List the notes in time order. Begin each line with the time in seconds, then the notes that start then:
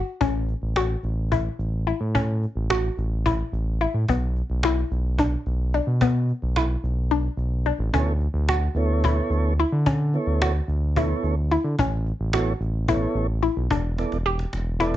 Already playing: F#4
0.21 A1 C#4, cajon bass
0.49 cajon slap
0.62 A1
0.76 F#4, cajon slap
1.03 A1, cajon slap
1.32 E4, cajon bass
1.58 A1, cajon slap
1.87 E4, cajon slap
2.00 A2
2.15 C#4, cajon bass
2.43 cajon slap
2.55 A1
2.70 F#4, cajon slap
2.97 A1, cajon slap
3.25 E4, cajon bass, cajon slap
3.52 A1, cajon slap
3.81 E4, cajon slap
3.94 A2
4.08 B1 B3, cajon bass
4.36 cajon slap
4.50 B1
4.63 E4, cajon slap
4.91 B1, cajon slap
5.18 D4, cajon bass
5.46 B1, cajon slap
5.74 D4, cajon slap
5.87 B2
6.01 B3, cajon bass
6.29 cajon slap
6.42 B1
6.56 E4, cajon slap
6.83 B1, cajon slap
7.11 D4, cajon slap
7.37 B1, cajon slap
7.66 D4, cajon slap
7.78 A1
7.93 D2 B3 C#4 E4 A4 C#5, cajon bass
8.21 cajon slap
8.34 D2
8.49 F#4, cajon slap
8.75 D2 B3 E4 A4 C#5, cajon slap
9.04 E4, cajon bass
9.30 D2, cajon slap
9.59 E4, cajon slap
9.72 D3
9.86 C#4, cajon bass
10.14 B3 E4 A4 C#5, cajon slap
10.26 D2
10.42 F#4, cajon slap
10.68 D2, cajon slap
10.96 B3 E4 A4 C#5, cajon bass
11.23 D2, cajon slap
11.51 E4, cajon slap
11.64 D3
11.79 A1 C#4, cajon bass
12.07 cajon slap
12.20 A1
12.33 B3 E4 F#4 A4 C#5, cajon slap
12.60 A1, cajon slap
12.88 B3 E4 A4 C#5, cajon bass
13.14 A1, cajon slap
13.43 E4, cajon slap
13.57 B1
13.70 E1 D4, cajon bass
13.98 B3 E4 A4 D5, cajon slap
14.12 E1, cajon slap
14.25 G4, cajon slap
14.39 cajon slap
14.53 E1, cajon slap
14.80 B3 E4 A4 D5, cajon slap